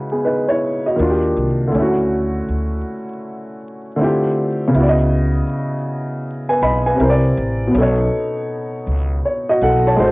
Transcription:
Already playing: upright piano C#3 G#3 D#4 E4 F#4 B4
0.12 upright piano B3 G#4
0.25 upright piano D#4 B4
0.49 upright piano E4 C#5
0.86 upright piano F#4 D#5
0.96 upright bass D#2, upright piano D#3 A#3 D4
1.01 upright piano F4 F#4
1.10 upright piano G4
1.37 upright bass C2
1.68 upright piano D3 A3
1.74 upright bass D2, upright piano C#4
1.79 upright piano E4 F#4
2.49 upright bass D2
3.96 upright piano D3 A3 C4
4.01 upright piano E4 F4 G4
4.68 upright piano C#3 B3
4.74 upright bass C#2, upright piano E4
4.78 upright piano F#4 D5
4.89 upright piano D#5
6.49 upright piano B4 G#5
6.62 upright bass B1, upright piano D#5 B5
6.86 upright piano B4 G#5
6.96 upright piano C3 C4 E4
7.00 upright bass C2, upright piano A#4 C5
7.09 upright piano D5
7.37 upright bass A1
7.67 upright piano B2 B3
7.74 upright bass B1, upright piano C#4 A4
7.81 upright piano D#4 C#5
8.87 upright bass C#2
9.26 upright piano C#5
9.49 upright piano F#4 D#5
9.61 upright bass B1, upright piano A4 F#5
9.87 upright piano C#5 A5
9.96 upright bass G#1, upright piano G#3 D#4 F#4 C5
10.02 upright piano A4 C5

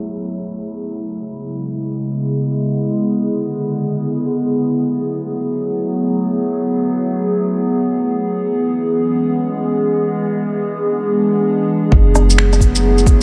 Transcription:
Already playing: ambient pad F#3 A3 B3 E4 G#4
0.92 ambient pad C#3
0.97 ambient pad G#3
1.13 ambient pad G#4
1.30 ambient pad B3
2.76 ambient pad D3
4.59 ambient pad F#3
4.67 ambient pad A3
8.25 ambient pad E3
8.47 ambient pad G#3
8.77 ambient pad C#4
10.51 ambient pad D4
11.92 808-style bass F#1, ambient pad F#3, kick
12.10 ambient pad A3
12.15 ambient pad E4, cross-stick, cabasa
12.30 shaker
12.38 finger snap
12.53 cross-stick, shaker
12.61 kick, cabasa
12.75 shaker
12.98 shaker
13.06 kick, cabasa

